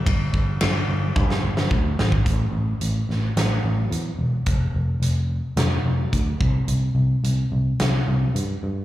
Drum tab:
RD |b---b-----------|----------------|----------------|----------------|
HH |----------------|x---x---x---x---|x---x---x---x---|x---x---x---x---|
SD |----o----o-o--o-|------o-o-------|--------o-------|--------o-------|
T1 |--------o-------|----------------|----------------|----------------|
BD |o-o-----o---o--o|o---------------|o-----------o-o-|----------------|